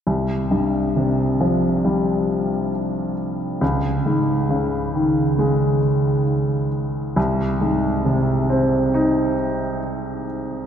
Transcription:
\new Staff \with { instrumentName = "Grand piano" } { \clef bass \time 4/4 \key c \phrygian \tempo 4 = 68 c,8 g,8 c8 f8 g2 | des,8 aes,8 des8 ees8 aes2 | c,8 aes,8 c8 c'8 ees'2 | }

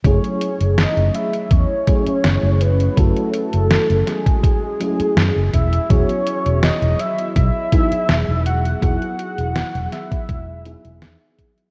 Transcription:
<<
  \new Staff \with { instrumentName = "Soft synth lead" } { \time 4/4 \key fis \dorian \tempo 4 = 82 cis''4 dis''8 e''8 cis''4. b'8 | a'4. gis'2 e''8 | cis''4 dis''8 e''8 e''4. fis''8 | fis''4. e''2 r8 | }
  \new Staff \with { instrumentName = "FM electric piano" } { \time 4/4 \key fis \dorian <fis a cis' e' gis'>2~ <fis a cis' e' gis'>8 <fis a cis' e' gis'>8 r4 | <fis a cis' e' fis'>2~ <fis a cis' e' fis'>8 <fis a cis' e' gis'>8 r4 | <fis b e' fis' gis'>2~ <fis b e' fis' gis'>8 <fis b dis' e' gis'>8 r4 | <fis b e' fis' gis'>2~ <fis b e' fis' gis'>8 <fis b dis' e' gis'>8 r4 | }
  \new Staff \with { instrumentName = "Fretless electric bass" } { \clef bass \time 4/4 \key fis \dorian fis,,16 r8 fis,,16 r16 fis,,16 r8 e,16 r8. fis,,16 fis,,8 r16 | fis,,16 r8 fis,,16 r16 fis,,16 r4. fis,16 fis,,16 e,,16 r16 | e,,16 r8 e,,16 r16 e,,16 r8 b,,16 r8. e,,16 e,,8 r16 | e,,16 r8 e,,16 r16 e,,16 r8 e,,8 r16 e,,16 e,16 r8. | }
  \new DrumStaff \with { instrumentName = "Drums" } \drummode { \time 4/4 <hh bd>16 hh16 hh16 hh16 <hh sn>16 hh16 hh16 hh16 <hh bd>8 <hh bd>16 hh16 <hh sn>8 hh16 hh16 | <hh bd>16 hh16 hh16 hh16 <hh sn>16 hh16 <hh sn>16 <hh bd>16 <hh bd>8 hh16 hh16 <hh sn>8 <hh bd>16 hh16 | <hh bd>16 hh16 hh16 hh16 <hh sn>16 hh16 hh16 hh16 <hh bd>8 <hh bd>16 hh16 <hh sn>8 hh16 hh16 | <hh bd>16 hh16 hh16 hh16 <hh sn>16 hh16 <hh sn>16 <hh bd>16 <hh bd>8 hh16 hh16 <hh sn>8 <hh bd>16 hh16 | }
>>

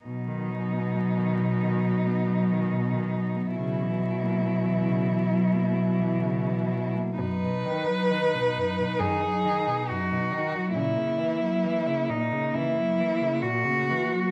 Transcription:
<<
  \new Staff \with { instrumentName = "Cello" } { \time 4/4 \key b \major \tempo 4 = 67 dis'1 | e'1 | b'2 gis'4 fis'4 | e'4. dis'8 e'4 fis'4 | }
  \new Staff \with { instrumentName = "Cello" } { \clef bass \time 4/4 \key b \major b,16 dis16 fis16 b16 fis16 dis16 b,16 dis16 fis16 b16 fis16 dis16 b,16 dis16 fis16 b16 | cis16 e16 fis16 ais16 fis16 e16 cis16 e16 fis16 ais16 fis16 e16 cis16 e16 fis16 ais16 | dis'1 | ais1 | }
  \new Staff \with { instrumentName = "Cello" } { \clef bass \time 4/4 \key b \major fis1 | fis2.~ fis8. r16 | fis,16 b,16 dis16 fis16 dis16 b,16 fis,16 b,16 dis16 fis16 dis16 b,16 fis,16 b,16 dis16 fis16 | ais,16 cis16 e16 fis16 e16 cis16 ais,16 cis16 e16 fis16 e16 cis16 ais,16 cis16 e16 fis16 | }
  \new Staff \with { instrumentName = "Cello" } { \clef bass \time 4/4 \key b \major b,1 | b,1 | b,4 r4 fis,4 r4 | cis4 r4 cis4 r4 | }
>>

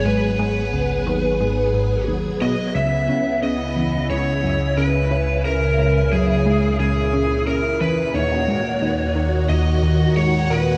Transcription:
<<
  \new Staff \with { instrumentName = "Lead electric guitar" } { \time 4/4 \key cis \dorian \tempo 4 = 89 b'2. r8 dis''8 | e''4 dis''4 cis''4 b'4 | ais'4 gis'4 gis'4 ais'8 b'8 | cis''2 dis''4 cis''8 b'8 | }
  \new Staff \with { instrumentName = "String machine" } { \time 4/4 \key cis \dorian << { <fis gis'>1 | <cis e'>1~ | <cis e'>1 | <dis fis'>1 | } \\ { b1 | b1 | ais,1~ | ais,1 | } >> }
  \new Staff \with { instrumentName = "Synth arpeggio sound" } { \clef bass \time 4/4 \key cis \dorian gis,8 gis,8 cis,8 dis,8 gis,8 gis,8 dis,8 b,8 | cis,8 cis8 cis8 e,8 cis,8 fis,8 cis8 cis8 | cis,8 cis,8 fis,8 gis,8 cis,8 cis8 cis8 e,8 | dis,8 gis,8 dis8 dis8 dis,8 dis,8 gis,8 ais,8 | }
  \new Staff \with { instrumentName = "Synth drone" } { \clef bass \time 4/4 \key cis \dorian gis,,1 | cis,1~ | cis,1 | dis,1 | }
>>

